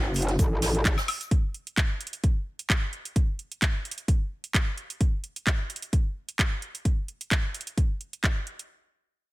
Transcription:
Already playing: F#1
0.14 open hi-hat, shaker
0.22 closed hi-hat
0.29 snare, closed hi-hat
0.39 A1, kick, closed hi-hat, shaker
0.62 snare, open hi-hat, shaker
0.75 closed hi-hat
0.85 G#1, kick, clap, closed hi-hat, shaker
0.98 snare, high woodblock, shaker
1.08 open hi-hat, high woodblock
1.21 closed hi-hat, shaker
1.31 kick, closed hi-hat
1.54 closed hi-hat
1.67 closed hi-hat
1.77 kick, clap, closed hi-hat
2.01 closed hi-hat
2.07 closed hi-hat
2.13 closed hi-hat
2.24 kick, closed hi-hat
2.59 closed hi-hat
2.70 kick, clap, closed hi-hat
2.93 closed hi-hat
3.05 closed hi-hat
3.16 kick, closed hi-hat
3.39 closed hi-hat
3.52 closed hi-hat
3.62 kick, clap, closed hi-hat
3.85 closed hi-hat
3.91 closed hi-hat
3.98 closed hi-hat
4.08 kick, closed hi-hat
4.44 closed hi-hat
4.54 kick, clap, closed hi-hat
4.78 closed hi-hat
4.90 closed hi-hat
5.01 kick, closed hi-hat
5.24 closed hi-hat
5.36 closed hi-hat
5.47 kick, clap, closed hi-hat
5.70 closed hi-hat
5.76 closed hi-hat
5.82 closed hi-hat
5.93 kick, closed hi-hat
6.29 closed hi-hat
6.39 kick, clap, closed hi-hat
6.62 closed hi-hat
6.75 closed hi-hat
6.85 kick, closed hi-hat
7.08 closed hi-hat
7.21 closed hi-hat
7.31 kick, clap, closed hi-hat
7.54 closed hi-hat
7.61 closed hi-hat
7.67 closed hi-hat
7.77 kick, closed hi-hat
8.01 closed hi-hat
8.13 closed hi-hat
8.24 kick, clap, closed hi-hat
8.47 closed hi-hat
8.59 closed hi-hat

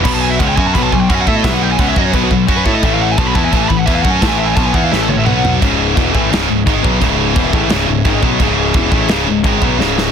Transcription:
0.04 B1 B2 F#3 B3 F#4 C#5 B5, kick, china, crash
0.13 A5
0.21 G#5
0.30 E5
0.39 C#2 C#3 G#3 C#4 F#5, kick, china
0.48 G5
0.56 F#2 F#3 C#4 F#4 G#5, kick
0.66 A5
0.74 B1 B2 F#3 B5, kick, china
0.78 B3
0.83 A5
0.92 B1 B2 F#3 G#5, kick
1.00 G5
1.09 F#2 F#3 C#4 F#4 F#5, kick, china
1.15 G#5
1.21 F#5
1.26 A2 A3 E4 A4 E5, kick
1.37 D#5
1.44 B1 B2 F#3 B3 E5, kick, snare, china
1.54 F#5
1.63 G5
1.71 G#5
1.79 C#2 C#3 G#3 C#4 F#5, kick, china
1.88 E5
1.96 F#2 F#3 C#4 F#4 D#5, kick
2.05 C#5
2.13 B1 B2 F#3 B3 B4, kick, china
2.23 F#4
2.31 B1 B2 F#3, kick
2.47 F#2 F#3 C#4 F#4, kick, china
2.57 B4
2.65 A2 A3 E4 A4 C#5, kick
2.73 D#5
2.83 A1 A2 E3 A3 E4 B4 E5 A5, kick, china
2.94 F5
3.02 F#5
3.12 G#5
3.18 B1 B2 F#3 B3 A5, kick, china
3.27 B5
3.35 E2 E3 B3 E4 A5, kick
3.45 G#5
3.51 A1 A2 E3 A3 A5, kick, china
3.58 G#5
3.64 A5
3.68 A1 A2 E3 B5, kick
3.77 F#5
3.86 E2 E3 B3 E4 E5, kick, china
3.95 F5
4.02 F#2 F#3 C#4 F#4 F#5, kick
4.10 G#5
4.21 A1 A2 E3 A3 A5, kick, snare, china
4.28 G#5
4.38 E5
4.46 G#5
4.56 B1 B2 F#3 B3 A5, kick, china
4.65 G#5
4.74 E2 E3 B3 E4 F#5, kick
4.84 F5
4.91 A1 A2 E3 A3 E5, snare
5.00 A4
5.08 A1 A2 E3 C#5, high tom
5.17 E5
5.26 B1 B2 F#3 B3 F#4 C#5 F#5 B5, mid tom
5.45 floor tom
5.61 C#1 C#2 G#2 C#3 C#4 G#4 D#5 E5, kick, china
5.95 E1 E2 B2 E3, kick, china
6.12 A1 A2 E3 A3, kick
6.31 C#1 C#2 G#2 C#3, snare, china
6.48 C#1 C#2 G#2
6.66 G#1 G#2 D#3 G#3, kick, china
6.83 B1 B2 F#3 B3, kick
7.00 C#1 C#2 G#2 C#3, kick, china
7.35 E1 E2 B2 E3, kick, china
7.53 A1 A2 E3 A3, kick
7.69 C#1 C#2 G#2 C#3, snare, china
7.88 C#1 C#2 G#2
8.05 G#1 G#2 D#3 G#3, kick, china
8.23 B1 B2 F#3 B3, kick
8.40 C#1 C#2 G#2 C#3, kick, china
8.74 E1 E2 B2 E3, kick, china
8.92 A1 A2 E3 A3, kick
9.08 C#1 C#2 G#2 C#3, snare, china
9.26 C#1 C#2 G#2
9.43 G#1 G#2 D#3 G#3, kick, china
9.60 B1 B2 F#3 B3, kick
9.79 C#1 C#2 G#2 C#3, snare
9.98 snare

